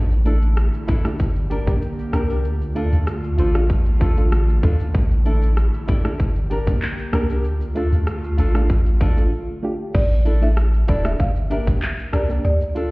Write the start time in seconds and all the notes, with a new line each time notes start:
Already playing: A1 D3 A3 E4
0.11 shaker
0.25 A3 D4 E4 A4, closed hi-hat, shaker
0.42 shaker
0.57 cross-stick, shaker
0.74 shaker
0.88 A1 D4 E4 A4, kick, closed hi-hat, shaker
1.04 A3 D4 E4 G4, cross-stick, shaker
1.19 G1 A#3 G4, kick, shaker
1.36 shaker
1.50 D4 G4 A#4, closed hi-hat, shaker
1.67 A#1 A#3 D4 G4 A#4, kick, shaker
1.82 shaker
1.99 shaker
2.12 C2 A#3 D4 G4 A#4, cross-stick, closed hi-hat, shaker
2.29 D4 G4 A#4, shaker
2.45 D2 A3 F4, shaker
2.61 shaker
2.75 A3 D4 F4 A4, closed hi-hat, shaker
2.92 D2, shaker
3.07 cross-stick, shaker
3.24 shaker
3.37 A1 D4 F4 A4 C5, closed hi-hat, shaker
3.54 A3 D4 F4 A4, cross-stick, shaker
3.69 kick, shaker
3.86 shaker
4.00 D4 F4 A4, kick, closed hi-hat, shaker
4.17 A3 D4 F4 A4, shaker
4.32 cross-stick, shaker
4.49 shaker
4.62 D2 A3 D4 F4 A4, kick, closed hi-hat, shaker
4.80 shaker
4.95 A1 E4, kick, shaker
5.11 shaker
5.25 A3 D4 E4 A4, closed hi-hat, shaker
5.42 shaker
5.57 cross-stick, shaker
5.74 shaker
5.87 A1 D4 E4 G4 A4, kick, closed hi-hat, shaker
6.04 A3 D4 E4 A4, cross-stick, shaker
6.19 G1 A#3 G4, kick, shaker
6.36 shaker
6.50 D4 G4 A#4, closed hi-hat, shaker
6.67 A#1 A#3 D4 G4 A#4, kick, shaker
6.82 clap, shaker
6.99 shaker
7.12 C2 A#3 D4 G4 A#4, cross-stick, closed hi-hat, shaker
7.29 D4 G4 A#4, shaker
7.44 D2 A3 F4, shaker
7.61 shaker
7.75 A3 D4 F4 A4, closed hi-hat, shaker
7.92 D2, shaker
8.07 cross-stick, shaker
8.24 shaker
8.37 A1 D4 F4 A4, closed hi-hat, shaker
8.54 A3 D4 F4 A4, cross-stick, shaker
8.69 kick, shaker
8.86 shaker
9.00 D4 F4 A4, kick, closed hi-hat, shaker
9.17 A3 D4 F4 A4, shaker
9.63 A3 D4 F4 G4
9.95 A1 D5, kick, crash, shaker
10.11 shaker
10.25 D4 E4 A4, closed hi-hat, shaker
10.42 A3 D4 E4 A4 E5, shaker
10.57 cross-stick, shaker
10.74 shaker
10.87 E1 D4 E4 A4 D5, kick, closed hi-hat, shaker
11.04 A3 D4 E4 A4 E5, cross-stick, shaker
11.19 G1 F5, kick, shaker
11.36 shaker
11.50 A#3 D4 G4 A#4 E5, closed hi-hat, shaker
11.67 G1, muted nylon-string guitar stroke, kick, shaker
11.82 clap, shaker
11.99 shaker
12.13 C2 D4 G4 A#4 D5, cross-stick, closed hi-hat, shaker
12.29 A#3 D4 G4 A#4, shaker
12.45 D2 D5, shaker
12.61 shaker
12.75 D4 F4 A4, closed hi-hat, shaker